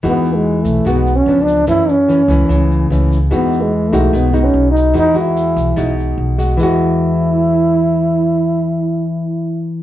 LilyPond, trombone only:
\new Staff \with { instrumentName = "Trombone" } { \time 4/4 \key e \major \tempo 4 = 146 \tuplet 3/2 { b4 gis8~ gis8 a4 b4 cis'8~ cis'8 d'4 } | e'8 cis'2 r4. | \tuplet 3/2 { b4 gis8~ gis8 a4 b4 cis'8~ cis'8 dis'4 } | dis'8 e'2 r4. |
e'1~ | e'1 | }